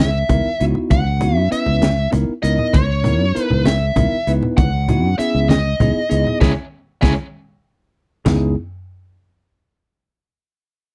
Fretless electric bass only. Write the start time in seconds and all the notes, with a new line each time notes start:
Already playing: C#2
0.30 C#2
0.46 muted fretless electric bass stroke
0.61 C#2
0.91 C#2
1.37 F#2
1.52 muted fretless electric bass stroke
1.68 C#2
2.13 C#2
2.43 C#2
2.74 C#2
3.20 F#2
3.37 muted fretless electric bass stroke
3.51 C#2
3.96 C#2
4.12 muted fretless electric bass stroke
4.27 C#2
4.58 C#2
5.04 F#2
5.19 muted fretless electric bass stroke
5.35 C#2
5.80 C#2
6.11 C#2
6.41 C#2
7.03 C#2
8.26 C#2